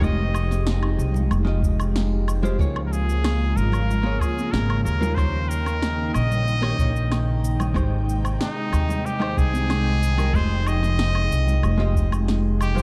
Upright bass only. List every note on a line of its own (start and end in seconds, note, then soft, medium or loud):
0.02 0.94 F1 medium
0.98 1.26 C2 medium
1.31 2.56 F1 medium
2.59 3.52 C#2 medium
3.57 4.17 G#1 medium
4.53 4.80 G#1 medium
4.85 6.10 D#2 medium
6.15 6.75 A#1 medium
6.79 7.72 A#1 medium
7.75 8.36 G#1 medium
8.73 9.33 D#2 medium
9.37 10.30 C2 medium
10.34 11.27 F1 loud
11.31 11.58 C2 medium
11.63 12.82 F1 medium